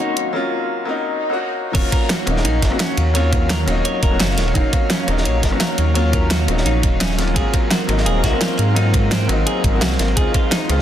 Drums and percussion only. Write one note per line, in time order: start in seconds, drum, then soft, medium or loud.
0.17 closed hi-hat medium
1.75 kick loud
1.75 closed hi-hat loud
1.75 crash loud
1.75 ride medium
1.92 kick loud
1.92 cross-stick soft
1.92 closed hi-hat medium
1.92 ride medium
2.09 snare loud
2.09 closed hi-hat medium
2.09 ride medium
2.27 cross-stick soft
2.27 closed hi-hat medium
2.27 ride medium
2.37 snare soft
2.45 closed hi-hat loud
2.45 ride medium
2.62 kick medium
2.62 snare soft
2.62 closed hi-hat medium
2.62 ride medium
2.72 cross-stick soft
2.80 snare loud
2.80 closed hi-hat medium
2.80 ride medium
2.97 closed hi-hat medium
2.97 ride medium
3.15 closed hi-hat loud
3.15 ride loud
3.33 kick loud
3.33 cross-stick soft
3.33 closed hi-hat medium
3.33 ride medium
3.50 snare loud
3.50 closed hi-hat medium
3.50 ride medium
3.68 cross-stick soft
3.68 closed hi-hat medium
3.68 ride medium
3.85 closed hi-hat medium
3.85 ride medium
4.03 kick loud
4.03 closed hi-hat medium
4.03 ride medium
4.20 snare loud
4.20 closed hi-hat medium
4.20 ride medium
4.30 snare soft
4.38 snare medium
4.38 closed hi-hat medium
4.38 ride medium
4.48 ride soft
4.55 kick loud
4.55 closed hi-hat loud
4.55 ride medium
4.73 kick loud
4.73 cross-stick soft
4.73 closed hi-hat medium
4.73 ride medium
4.90 snare loud
4.90 closed hi-hat medium
4.90 ride medium
5.08 cross-stick soft
5.08 closed hi-hat medium
5.08 ride medium
5.17 snare soft
5.25 closed hi-hat medium
5.25 ride medium
5.43 kick medium
5.43 snare soft
5.43 closed hi-hat medium
5.43 ride medium
5.52 cross-stick soft
5.60 snare loud
5.60 closed hi-hat medium
5.60 ride medium
5.78 closed hi-hat medium
5.78 ride medium
5.95 closed hi-hat medium
5.95 ride medium
6.13 kick loud
6.13 cross-stick soft
6.13 closed hi-hat medium
6.13 ride medium
6.30 snare loud
6.30 closed hi-hat medium
6.30 ride medium
6.48 cross-stick soft
6.48 closed hi-hat medium
6.48 ride medium
6.57 snare medium
6.66 closed hi-hat medium
6.66 ride medium
6.83 kick loud
6.83 closed hi-hat medium
6.83 ride medium
7.01 snare loud
7.01 closed hi-hat medium
7.01 ride medium
7.11 snare medium
7.18 snare medium
7.18 closed hi-hat medium
7.18 ride medium
7.27 ride soft
7.36 kick loud
7.36 closed hi-hat medium
7.36 ride loud
7.54 kick loud
7.54 cross-stick soft
7.54 closed hi-hat medium
7.54 ride medium
7.71 snare loud
7.71 closed hi-hat medium
7.71 ride medium
7.89 cross-stick soft
7.89 closed hi-hat medium
7.89 ride medium
7.98 snare soft
8.06 closed hi-hat medium
8.06 ride medium
8.24 kick medium
8.24 snare soft
8.24 closed hi-hat medium
8.24 ride medium
8.33 cross-stick soft
8.41 snare loud
8.41 closed hi-hat medium
8.41 ride medium
8.57 closed hi-hat medium
8.57 ride medium
8.76 closed hi-hat loud
8.76 ride medium
8.94 kick loud
8.94 cross-stick soft
8.94 closed hi-hat medium
8.94 ride medium
9.11 snare loud
9.11 closed hi-hat medium
9.11 ride loud
9.29 cross-stick soft
9.29 closed hi-hat medium
9.29 ride medium
9.47 closed hi-hat medium
9.47 ride medium
9.64 kick loud
9.64 closed hi-hat medium
9.64 ride medium
9.81 snare loud
9.81 closed hi-hat medium
9.81 ride loud
9.90 snare soft
9.99 snare medium
9.99 closed hi-hat medium
9.99 ride medium
10.08 ride soft
10.17 kick loud
10.17 closed hi-hat loud
10.17 ride medium
10.34 kick loud
10.34 cross-stick soft
10.34 closed hi-hat medium
10.34 ride medium
10.51 snare loud
10.51 closed hi-hat loud
10.51 ride medium
10.69 cross-stick soft
10.69 closed hi-hat medium
10.69 ride medium